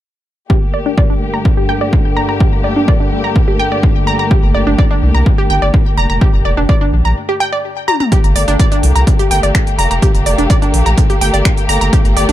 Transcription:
0.50 7.17 G2 medium
0.50 7.17 D3 medium
0.50 7.13 A3 medium
0.50 7.13 A#3 medium
0.50 0.57 G4 medium
0.50 7.13 G4 medium
0.50 kick loud
0.74 0.84 D5 medium
0.86 0.90 D4 medium
0.98 1.02 D5 medium
0.98 kick loud
1.10 1.14 D4 medium
1.34 1.38 A#5 medium
1.45 kick loud
1.57 1.64 G4 medium
1.69 1.73 G5 loud
1.81 1.88 D5 medium
1.93 kick loud
2.17 2.24 A#5 loud
2.29 2.33 A#5 medium
2.40 2.47 G4 medium
2.40 kick loud
2.64 2.75 D5 medium
2.76 2.80 D4 medium
2.88 2.92 D5 medium
2.88 kick loud
3.00 3.04 D4 medium
3.24 3.28 A#5 medium
3.36 kick loud
3.48 3.54 G4 medium
3.59 3.64 G5 loud
3.72 3.78 D5 medium
3.83 kick loud
4.07 4.14 A#5 loud
4.19 4.23 A#5 medium
4.31 4.38 G4 medium
4.31 kick loud
4.43 4.52 G1 medium
4.55 4.64 G1 medium
4.55 4.65 D5 medium
4.67 4.75 G1 medium
4.67 4.71 D4 medium
4.78 4.83 D5 medium
4.78 kick loud
4.91 4.95 D4 medium
5.02 5.11 C2 medium
5.15 5.23 C2 medium
5.15 5.19 A#5 medium
5.26 kick loud
5.38 5.45 G4 medium
5.50 5.59 G1 medium
5.50 5.54 G5 loud
5.62 5.71 G1 medium
5.62 5.69 D5 medium
5.74 kick loud
5.98 6.07 F1 medium
5.98 6.05 A#5 loud
6.10 6.18 F1 medium
6.10 6.14 A#5 medium
6.21 6.28 G4 medium
6.21 kick loud
6.34 6.42 F1 medium
6.45 6.54 F1 medium
6.45 6.56 D5 medium
6.57 6.66 F1 medium
6.57 6.61 D4 medium
6.69 6.73 D5 medium
6.69 kick loud
6.81 6.85 D4 medium
6.93 7.02 A#1 medium
7.05 7.14 A#1 medium
7.05 7.09 A#5 medium
7.29 7.35 G4 medium
7.40 7.45 G5 loud
7.53 7.59 D5 medium
7.88 7.95 A#5 loud
7.88 high tom medium
8.00 8.04 A#5 medium
8.00 mid tom medium
8.12 12.32 A3 medium
8.12 12.32 A#3 medium
8.12 8.19 G4 medium
8.12 12.32 G4 medium
8.12 kick loud
8.12 closed hi-hat medium
8.24 8.33 G1 medium
8.24 closed hi-hat soft
8.36 8.45 G1 medium
8.36 8.46 D5 medium
8.36 open hi-hat loud
8.48 8.56 G1 medium
8.48 8.52 D4 medium
8.48 closed hi-hat soft
8.59 8.64 D5 loud
8.59 kick loud
8.59 closed hi-hat medium
8.72 8.76 D4 medium
8.72 closed hi-hat soft
8.83 8.92 C2 medium
8.83 open hi-hat loud
8.96 9.04 C2 medium
8.96 9.00 A#5 medium
8.96 closed hi-hat soft
9.07 kick loud
9.07 closed hi-hat medium
9.19 9.26 G4 medium
9.19 closed hi-hat soft
9.31 9.40 G1 medium
9.31 9.35 G5 loud
9.31 open hi-hat loud
9.43 9.52 G1 medium
9.43 9.50 D5 medium
9.43 closed hi-hat soft
9.55 finger snap loud
9.55 kick loud
9.55 closed hi-hat medium
9.67 closed hi-hat soft
9.79 9.87 F1 medium
9.79 9.86 A#5 loud
9.79 open hi-hat loud
9.91 9.99 F1 medium
9.91 9.95 A#5 medium
9.91 closed hi-hat soft
10.02 10.09 G4 medium
10.02 kick loud
10.02 closed hi-hat medium
10.15 10.23 F1 medium
10.15 closed hi-hat soft
10.26 10.35 F1 medium
10.26 10.37 D5 medium
10.26 open hi-hat loud
10.38 10.47 F1 medium
10.38 10.42 D4 medium
10.38 closed hi-hat soft
10.50 10.54 D5 loud
10.50 kick loud
10.50 closed hi-hat medium
10.62 10.66 D4 medium
10.62 closed hi-hat soft
10.74 10.83 A#1 medium
10.74 open hi-hat loud
10.86 10.94 A#1 medium
10.86 10.90 A#5 medium
10.86 closed hi-hat soft
10.98 kick loud
10.98 closed hi-hat medium
11.10 11.16 G4 medium
11.10 closed hi-hat soft
11.21 11.30 G1 medium
11.21 11.26 G5 loud
11.21 open hi-hat loud
11.34 11.42 G1 medium
11.34 11.40 D5 medium
11.34 closed hi-hat soft
11.45 finger snap loud
11.45 kick loud
11.45 closed hi-hat medium
11.57 closed hi-hat soft
11.69 11.78 G1 medium
11.69 11.76 A#5 loud
11.69 open hi-hat loud
11.81 11.90 G1 medium
11.81 11.85 A#5 medium
11.81 closed hi-hat soft
11.93 12.00 G4 medium
11.93 kick loud
11.93 closed hi-hat medium
12.05 12.13 G1 medium
12.05 closed hi-hat soft
12.17 12.26 G1 medium
12.17 12.27 D5 medium
12.17 open hi-hat loud
12.29 12.32 G1 medium
12.29 12.32 D4 medium
12.29 closed hi-hat soft

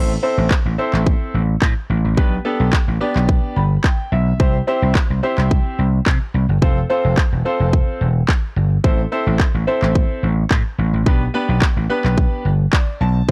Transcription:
0.00 0.16 A1 medium
0.00 0.10 C4 medium
0.00 0.11 E4 medium
0.00 0.11 A4 medium
0.00 0.11 C5 medium
0.23 0.52 C4 medium
0.23 0.52 E4 medium
0.23 0.52 A4 medium
0.23 0.52 C5 medium
0.38 0.47 A1 medium
0.51 kick loud
0.51 clap loud
0.65 0.75 A1 medium
0.78 1.37 C4 medium
0.78 1.37 E4 medium
0.78 1.37 A4 medium
0.78 1.37 C5 medium
0.93 1.14 A1 medium
0.93 clap medium
1.07 kick loud
1.34 1.54 A1 medium
1.62 1.73 A2 medium
1.62 kick loud
1.62 clap loud
1.90 2.00 A1 medium
2.04 2.14 A1 medium
2.17 2.38 B1 medium
2.17 2.33 B3 medium
2.17 2.33 D4 medium
2.17 2.33 G4 medium
2.17 2.33 B4 medium
2.17 kick loud
2.45 2.74 B3 medium
2.45 2.74 D4 medium
2.45 2.74 G4 medium
2.45 2.74 A4 medium
2.60 2.69 B1 medium
2.73 kick loud
2.73 clap loud
2.88 2.97 A1 medium
3.01 3.59 B3 medium
3.01 3.59 D4 medium
3.01 3.59 G4 medium
3.01 3.59 D5 medium
3.16 3.36 B1 medium
3.16 clap medium
3.29 kick loud
3.56 3.77 G1 medium
3.56 3.82 B5 medium
3.84 4.10 G5 medium
3.84 kick loud
3.84 clap loud
4.12 4.32 B1 medium
4.12 4.38 E5 medium
4.40 4.60 C2 loud
4.40 4.55 C4 medium
4.40 4.55 E4 medium
4.40 4.55 G4 medium
4.40 4.55 C5 medium
4.40 kick loud
4.67 4.97 C4 medium
4.67 4.97 E4 medium
4.67 4.97 G4 medium
4.67 4.97 C5 loud
4.82 4.92 C2 medium
4.95 kick loud
4.95 clap loud
5.10 5.20 C2 medium
5.23 5.81 C4 medium
5.23 5.81 E4 medium
5.23 5.81 G4 medium
5.23 5.82 C5 medium
5.38 5.58 C2 medium
5.38 clap medium
5.51 kick loud
5.79 5.99 C2 medium
6.06 6.17 C3 loud
6.06 kick loud
6.06 clap loud
6.34 6.45 C2 medium
6.49 6.58 G1 medium
6.62 6.82 F1 medium
6.62 6.77 C4 medium
6.62 6.77 F4 medium
6.62 6.77 A4 medium
6.62 6.77 C5 medium
6.62 kick loud
6.90 7.19 C4 medium
6.90 7.19 F4 medium
6.90 7.19 A4 medium
6.90 7.19 C5 medium
7.05 7.14 F1 medium
7.17 kick loud
7.17 clap loud
7.32 7.42 E1 medium
7.45 8.04 C4 medium
7.45 8.04 F4 medium
7.45 8.04 A4 medium
7.45 8.04 C5 medium
7.60 7.80 F1 medium
7.73 kick loud
8.01 8.21 E1 medium
8.29 kick loud
8.29 clap loud
8.56 8.77 G1 medium
8.84 9.04 A1 medium
8.84 8.99 C4 medium
8.84 8.99 E4 medium
8.84 9.00 A4 medium
8.84 9.00 C5 medium
8.84 kick loud
9.12 9.41 C4 medium
9.12 9.41 E4 medium
9.12 9.41 A4 medium
9.12 9.41 C5 medium
9.27 9.36 A1 medium
9.40 kick loud
9.40 clap loud
9.54 9.64 A1 medium
9.67 10.26 C4 medium
9.67 10.26 E4 medium
9.67 10.26 A4 medium
9.67 10.26 C5 medium
9.82 10.02 A1 medium
9.82 clap medium
9.95 kick loud
10.23 10.43 A1 medium
10.51 10.61 A2 medium
10.51 kick loud
10.51 clap loud
10.78 10.89 A1 medium
10.93 11.03 A1 medium
11.06 11.27 B1 loud
11.06 11.22 B3 medium
11.06 11.22 D4 medium
11.06 11.22 G4 medium
11.06 11.22 B4 medium
11.06 kick loud
11.34 11.63 B3 medium
11.34 11.63 D4 medium
11.34 11.63 G4 medium
11.34 11.63 B4 loud
11.49 11.58 B1 medium
11.62 kick loud
11.62 clap loud
11.77 11.86 A1 medium
11.89 12.48 B3 medium
11.89 12.48 D4 medium
11.89 12.48 G4 medium
11.89 12.48 B4 loud
12.04 12.25 B1 medium
12.04 clap medium
12.18 kick loud
12.45 12.65 G1 medium
12.73 12.99 D5 medium
12.73 kick loud
12.73 clap loud
13.01 13.21 B1 medium
13.01 13.27 A5 medium

